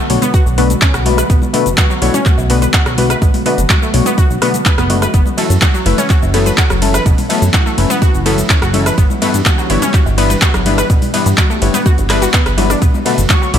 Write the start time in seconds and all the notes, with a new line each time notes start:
Already playing: D3 F#3 A3 B3 F#4
0.10 B1 B2 A3 B3 D4 F#4 C#5, open hi-hat
0.22 B3 B4, closed hi-hat, high conga, cabasa
0.34 F#4 F#5, kick, closed hi-hat, cabasa
0.46 B1, cabasa
0.58 B2 A3 B3 D4 F#4 B4, open hi-hat
0.70 closed hi-hat, high conga, cabasa
0.82 C#4 C#5, kick, clap, closed hi-hat, cabasa
0.94 B1 F#4 F#5, cross-stick, closed hi-hat, cabasa
1.06 B2 A3 B3 D4 F#4 B4, open hi-hat, cowbell, high conga
1.17 B4 B5, cross-stick, closed hi-hat, cowbell, cabasa
1.30 B1 B3 B4, kick, closed hi-hat, cabasa
1.42 high conga, cabasa
1.53 B2 A3 B3 D4 F#4 A4 B4, open hi-hat, cowbell
1.66 F#1, closed hi-hat, cabasa
1.78 F#4 F#5, kick, clap, closed hi-hat, high conga, cabasa
1.90 F#3 F#4, cabasa
2.02 B1 B2 A3 B3 D4 E4 F#4 C#5 E5, open hi-hat
2.14 C#4 C#5, closed hi-hat, high conga, cabasa
2.25 F#4 F#5, kick, clap, closed hi-hat, cabasa
2.38 B1, cowbell, cabasa
2.50 B2 A3 B3 D4 F#4 B4, open hi-hat
2.62 B4 B5, closed hi-hat, high conga, cabasa
2.73 F#4 F#5, kick, clap, closed hi-hat, cabasa
2.86 B1 F#3 F#4, cross-stick, closed hi-hat, cabasa
2.98 B2 A3 B3 D4 F#4 B4, open hi-hat, high conga
3.10 B4 B5, cross-stick, closed hi-hat, cowbell, cabasa
3.22 B1 B2 B3, kick, closed hi-hat, cabasa
3.34 open hi-hat, high conga, cabasa
3.46 B2 A3 B3 D4 F#4 B4, open hi-hat, cowbell
3.58 F#1, closed hi-hat, cabasa
3.70 F#4 F#5, kick, clap, closed hi-hat, high conga, cabasa
3.82 A3 A4, cabasa
3.94 B1 B2 A3 B3 D4 F#4 C#5, open hi-hat
4.05 B3 B4, closed hi-hat, high conga, cabasa
4.18 F#4 F#5, kick, closed hi-hat, cabasa
4.30 B1, cabasa
4.42 B2 A3 B3 D4 F#4 B4, cross-stick, open hi-hat
4.54 closed hi-hat, high conga, cabasa
4.65 B4 B5, kick, clap, closed hi-hat, cabasa
4.78 F#1 B3 B4, cross-stick, closed hi-hat, cabasa
4.90 A3 B3 D4 F#4 B4, open hi-hat, cowbell, high conga
5.02 B4 B5, cross-stick, closed hi-hat, cowbell, cabasa
5.14 F#1 E3 B3 C#4 B4, kick, closed hi-hat, cabasa
5.26 high conga, cabasa
5.37 F#3 A3 C#4 E4 A4, open hi-hat, ride, cowbell
5.50 F#2, closed hi-hat, cabasa
5.61 F#4 F#5, kick, clap, closed hi-hat, high conga, cabasa
5.74 F#3 F#4, cabasa
5.86 F#1 F#3 A3 C#4 E4 B4 E5, open hi-hat, ride
5.98 C#4 C#5, closed hi-hat, high conga, cabasa
6.10 F#4 F#5, kick, clap, closed hi-hat, cabasa
6.22 F#1, cowbell, cabasa
6.34 F#3 A3 B3 C#4 E4 A4 B4, open hi-hat, ride
6.46 B4 B5, closed hi-hat, high conga, cabasa
6.58 F#4 F#5, kick, clap, closed hi-hat, cabasa
6.70 F#1 F#3 F#4, cross-stick, closed hi-hat, cabasa
6.82 F#3 A3 C#4 E4 A4, open hi-hat, ride, high conga
6.94 B4 B5, cross-stick, closed hi-hat, cowbell, cabasa
7.06 F#1 B2 B3 E4, kick, closed hi-hat, cabasa
7.18 open hi-hat, high conga, cabasa
7.29 F#3 A3 B3 C#4 E4 A4 B4, open hi-hat, ride, cowbell
7.42 F#2, closed hi-hat, cabasa
7.53 F#4 F#5, kick, clap, closed hi-hat, high conga, cabasa
7.66 A3 A4, cabasa
7.78 F#1 F#3 A3 C#4 E4 B4, open hi-hat, ride
7.90 B3 B4, closed hi-hat, high conga, cabasa
8.02 F#4 F#5, kick, closed hi-hat, cabasa
8.14 F#1, cabasa
8.26 F#3 A3 B3 C#4 E4 A4 B4, open hi-hat, ride
8.38 closed hi-hat, high conga, cabasa
8.50 C#4 C#5, kick, clap, closed hi-hat, cabasa
8.62 F#1 F#4 F#5, cross-stick, closed hi-hat, cabasa
8.73 F#3 A3 C#4 E4 A4, open hi-hat, ride, cowbell, high conga
8.86 B4 B5, cross-stick, closed hi-hat, cowbell, cabasa
8.98 G1 G3 B3 D4 G4 B4, kick, closed hi-hat, cabasa
9.10 high conga, cabasa
9.22 G2 G3 A3 B3 D4 E4 A4 B4, open hi-hat, ride, cowbell
9.34 G2, closed hi-hat, cabasa
9.46 F#4 F#5, kick, clap, closed hi-hat, high conga, cabasa
9.58 F#3 F#4, cabasa
9.70 G1 G2 G3 B3 D4 E4 C#5 E5, open hi-hat, ride
9.82 C#4 C#5, closed hi-hat, high conga, cabasa
9.94 F#4 F#5, kick, clap, closed hi-hat, cabasa
10.06 G1, cowbell, cabasa
10.18 G2 G3 B3 D4 E4 B4, open hi-hat, ride
10.30 B4 B5, closed hi-hat, high conga, cabasa
10.42 F#4 F#5, kick, clap, closed hi-hat, cabasa
10.54 G1 F#3 F#4, cross-stick, closed hi-hat, cabasa
10.66 G2 G3 B3 D4 E4 B4, open hi-hat, ride, high conga
10.78 B4 B5, cross-stick, closed hi-hat, cowbell, cabasa
10.90 G1 B2 B3, kick, closed hi-hat, cabasa
11.02 open hi-hat, high conga, cabasa
11.14 G2 G3 B3 D4 E4 B4, open hi-hat, ride, cowbell
11.26 G2, closed hi-hat, cabasa
11.38 F#4 F#5, kick, clap, closed hi-hat, high conga, cabasa
11.50 A3 A4, cabasa
11.62 G1 G2 G3 B3 D4 E4 C#5, open hi-hat, ride
11.74 B3 B4, closed hi-hat, high conga, cabasa
11.86 F#4 F#5, kick, closed hi-hat, cabasa
11.98 G1, closed hi-hat, cabasa
12.09 G2 G3 B3 D4 E4 B4 B5, cross-stick, clap, open hi-hat, ride
12.22 F#4 F#5, closed hi-hat, high conga, cabasa
12.33 B3 B4, kick, clap, closed hi-hat, cabasa
12.46 G1 B4 B5, cross-stick, closed hi-hat, cabasa
12.58 F#3 G3 B3 D4 E4 F#4 B4, open hi-hat, ride, cowbell, high conga
12.70 D4 D5, cross-stick, open hi-hat, cowbell, cabasa
12.82 B1 D3 F#3 A3 B3 F#4 B4, kick, closed hi-hat, cabasa
12.94 high conga, cabasa
13.05 B2 A3 B3 D4 F#4 A4 B4, open hi-hat, ride, cowbell
13.18 F#1, closed hi-hat, cabasa
13.29 F#4 F#5 C#6, kick, clap, closed hi-hat, high conga, cabasa
13.42 F#3 F#4, cabasa
13.54 B1 B2 A3 B3 D4 E4 F#4 C#5 E5 D6, open hi-hat, ride